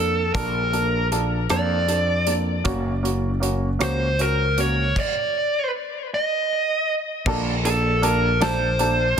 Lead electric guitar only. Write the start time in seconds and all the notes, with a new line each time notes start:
Already playing: A4
0.34 A#4
1.51 D5
3.83 C5
4.21 A#4
4.60 C#5
5.00 D5
6.14 D#5
7.66 A4
8.05 A#4
8.43 C5